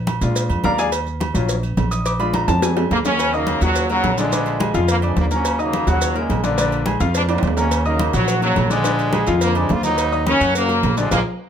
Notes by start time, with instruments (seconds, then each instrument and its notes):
Already playing: upright bass A#1
0.07 cowbell, high conga, low timbale, low agogo, maracas
0.21 upright bass A#2, grand piano G#3 D4 F4, cowbell, high conga, maracas
0.35 cowbell, high conga, low agogo, maracas
0.50 upright bass F2, high conga, low agogo, maracas
0.64 upright bass D#2, grand piano A#4 D5 F5 A#5, cowbell, high conga, low timbale, low agogo, maracas
0.78 grand piano G#4 D5 F5 G#5, cowbell, maracas
0.92 cowbell, high conga, low agogo, maracas
1.07 high conga, maracas
1.20 cowbell, high conga, low timbale, low agogo, maracas
1.34 upright bass A#1, grand piano F#3 C#4 F4, cowbell, low agogo, maracas
1.49 cowbell, high conga, maracas
1.63 high conga, low agogo, maracas
1.77 upright bass A#1, cowbell, high conga, low timbale, low agogo, maracas
1.91 grand piano D#6, cowbell, maracas
2.06 grand piano D6, cowbell, high conga, low agogo, maracas
2.19 grand piano G#3 D4 F4 B5, high conga, low agogo, maracas
2.34 grand piano A#5, cowbell, high conga, low timbale, low agogo, maracas
2.48 upright bass F2, grand piano A5, cowbell, high conga, high timbale, maracas
2.62 grand piano G#5, cowbell, high bongo, high conga, low timbale, low agogo, maracas
2.77 high bongo, high conga, low timbale, low agogo, maracas
2.91 upright bass D#2, trombone section A#3, cowbell, high conga, low timbale, low agogo, maracas
3.05 trombone section F#3 A#3 C#4, cowbell, low bongo, high conga, low timbale, maracas
3.19 cowbell, high conga, low agogo, maracas
3.33 trombone section C#3 F#3 A#3, grand piano D#4 D#5 D#6, high conga, maracas
3.47 cowbell, high conga, low timbale, low agogo, maracas
3.61 upright bass D#2, trombone section A#2 C#3 F#3, grand piano F#3 F#4 F#5, cowbell, high conga, low agogo, maracas
3.75 cowbell, high conga, maracas
3.89 trombone section A#2 C#3 F#3, grand piano A#3 A#4 A#5, high conga, low agogo, maracas
4.04 upright bass A#1, cowbell, high conga, low timbale, low agogo, maracas
4.18 grand piano D3 D4 D5, trombone section D3 F3 G#3, cowbell, maracas
4.32 grand piano D3 D4 D5, cowbell, high conga, low agogo, maracas
4.46 high conga, low agogo, maracas
4.60 grand piano G#3 G#4 G#5, cowbell, high conga, low timbale, low agogo, maracas
4.74 upright bass F2, grand piano F3 F4 F5, cowbell, high conga, maracas
4.88 trombone section D3 F3 A#3, cowbell, high conga, low agogo, maracas
5.02 trombone section G#3, grand piano D4 D5 D6, high conga, low agogo, maracas
5.17 upright bass D#2, trombone section A#3, cowbell, high conga, low timbale, low agogo, maracas
5.31 trombone section F#3 A#3 C#4, grand piano A#3 A#4 A#5, cowbell, maracas
5.45 cowbell, high conga, low agogo, maracas
5.58 trombone section C#3 F#3 A#3, grand piano D#4 D#5 D#6, high conga, maracas
5.73 cowbell, high conga, low timbale, low agogo, maracas
5.87 upright bass D#2, trombone section A#2 C#3 F#3, grand piano F#3 F#4 F#5, cowbell, high conga, low agogo, maracas
6.01 cowbell, high conga, maracas
6.15 trombone section C#3 G#3, grand piano A#3 A#4 A#5, high conga, low agogo, maracas
6.29 upright bass A#1, cowbell, high conga, low timbale, low agogo, maracas
6.44 grand piano D3 D4 D5, trombone section D3 F3 A#3, cowbell, maracas
6.58 grand piano D3 D4 D5, cowbell, high conga, low agogo, maracas
6.72 high conga, low agogo, maracas
6.86 grand piano G#3 G#4 G#5, cowbell, high conga, low timbale, low agogo, maracas
7.00 upright bass F2, grand piano F3 F4 F5, cowbell, high conga, maracas
7.14 trombone section F3 G#3 D4, cowbell, high conga, low agogo, maracas
7.29 trombone section A#3, grand piano D4 D5 D6, high conga, high timbale, low agogo, maracas
7.38 high timbale
7.43 upright bass D#2, trombone section A#3, cowbell, high conga, low agogo, maracas
7.47 low timbale
7.57 trombone section F#3 A#3 C#4, grand piano A#3 A#4 A#5, cowbell, low timbale, maracas
7.71 cowbell, high conga, low agogo, maracas
7.85 trombone section C#3 F#3 A#3, grand piano D#4 D#5 D#6, high conga, maracas
7.99 cowbell, high conga, low timbale, low agogo, maracas
8.13 upright bass A#1, trombone section A#2 C#3 F#3, grand piano F#3 F#4 F#5, cowbell, high conga, low agogo, maracas
8.28 cowbell, high conga, maracas
8.42 trombone section A#2 C#3 F#3, grand piano A#3 A#4 A#5, high conga, low agogo, maracas
8.56 upright bass A#1, cowbell, high conga, low timbale, low agogo, maracas
8.70 grand piano D3 D4 D5, trombone section D3 F3 G#3, cowbell, maracas
8.84 grand piano D3 D4 D5, cowbell, high conga, low agogo, maracas
8.99 high conga, low agogo, maracas
9.13 grand piano G#3 G#4 G#5, cowbell, high conga, low timbale, low agogo, maracas
9.27 upright bass F2, grand piano F3 F4 F5, cowbell, high conga, maracas
9.41 trombone section D3 F3 A#3, cowbell, high conga, low agogo, maracas
9.55 trombone section G#3, grand piano D4 D5 D6, high conga, low agogo, maracas
9.69 upright bass D#2, trombone section F4, cowbell, high conga, low timbale, low agogo, maracas
9.83 trombone section F#3 A#3 D#4, grand piano A#3 A#4 A#5, cowbell, maracas
9.98 cowbell, high conga, low agogo, maracas
10.12 grand piano D#4 D#5 D#6, high conga, maracas
10.26 trombone section F#3 A#3 C#4, cowbell, high conga, low timbale, low agogo, maracas
10.40 upright bass F#2, grand piano F#3 F#4 F#5, cowbell, high conga, low agogo, maracas
10.55 trombone section C#3 F#3 A#3, cowbell, high conga, maracas
10.69 grand piano A#3 A#4 A#5, high conga, low agogo, maracas
10.83 upright bass A#1, cowbell, high conga, low timbale, low agogo, maracas
10.97 grand piano D3 D4 D5, trombone section D3 F3 G#3, cowbell, maracas
11.11 upright bass A#1, trombone section F3 G#3 A#3, grand piano F4 G#4 A#4, cowbell, high conga, high timbale, maracas